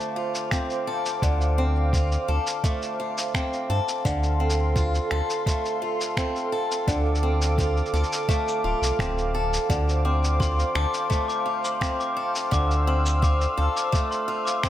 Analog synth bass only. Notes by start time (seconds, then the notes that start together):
1.23 D2
2.29 D2
3.70 G2
4.05 D2
5.12 D2
6.87 D2
7.93 D2
8.64 D1
8.82 C2
8.99 D1
9.69 D2
10.75 D2
12.52 D2
13.58 D2